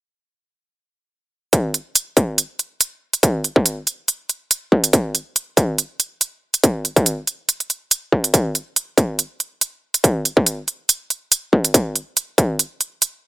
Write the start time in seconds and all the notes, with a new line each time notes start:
1.53 kick, closed hi-hat
1.74 closed hi-hat
1.95 closed hi-hat
2.17 kick, closed hi-hat
2.38 closed hi-hat
2.59 closed hi-hat
2.81 closed hi-hat
3.13 closed hi-hat
3.23 kick, closed hi-hat
3.44 closed hi-hat
3.56 kick
3.66 closed hi-hat
3.87 closed hi-hat
4.08 closed hi-hat
4.29 closed hi-hat
4.51 closed hi-hat
4.72 kick
4.84 closed hi-hat
4.93 kick, closed hi-hat
5.15 closed hi-hat
5.36 closed hi-hat
5.57 kick, closed hi-hat
5.78 closed hi-hat
6.00 closed hi-hat
6.21 closed hi-hat
6.54 closed hi-hat
6.64 kick, closed hi-hat
6.85 closed hi-hat
6.96 kick, closed hi-hat
7.06 closed hi-hat
7.27 closed hi-hat
7.49 closed hi-hat
7.60 closed hi-hat
7.70 closed hi-hat
7.91 closed hi-hat
8.12 kick
8.24 closed hi-hat
8.34 kick, closed hi-hat
8.55 closed hi-hat
8.76 closed hi-hat
8.98 kick, closed hi-hat
9.19 closed hi-hat
9.40 closed hi-hat
9.61 closed hi-hat
9.94 closed hi-hat
10.04 kick, closed hi-hat
10.25 closed hi-hat
10.37 kick
10.46 closed hi-hat
10.68 closed hi-hat
10.89 closed hi-hat
11.10 closed hi-hat
11.32 closed hi-hat
11.53 kick
11.65 closed hi-hat
11.74 kick, closed hi-hat
11.96 closed hi-hat
12.17 closed hi-hat
12.38 kick, closed hi-hat
12.59 closed hi-hat
12.81 closed hi-hat
13.02 closed hi-hat